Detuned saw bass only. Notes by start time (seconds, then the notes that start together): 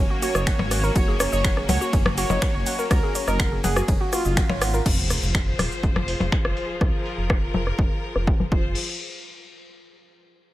0.35 F#1
0.59 G#1
0.96 F#1
1.32 F#1
1.69 C#2
1.93 F#1
2.30 F#1
2.55 F#1
2.91 C#2
3.28 F#1
3.64 F#1
3.88 F#1
4.25 F#1
4.50 G#1
4.86 F1
5.23 F1
5.59 D#1
5.83 F1
6.20 F1
6.45 F1
6.81 C2
7.18 F1
7.54 F1
7.79 F1
8.15 F1
8.40 F#1
8.52 F1